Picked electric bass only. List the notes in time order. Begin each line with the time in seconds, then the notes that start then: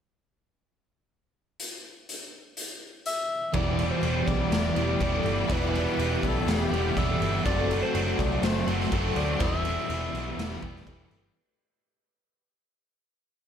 3.54 E1
4.03 E1
4.28 B1
4.52 E1
4.76 E1
5.00 E1
5.24 G1
5.50 E1
5.98 E1
6.23 B1
6.46 E1
6.71 E1
6.96 E1
7.21 G1
7.46 F#1
7.95 F#1
8.19 C2
8.43 F#1
8.67 F#1
8.92 F#1
9.16 D2
9.41 E1
9.89 E1
10.13 B1
10.37 E1
10.62 E1
10.87 E1
11.11 G1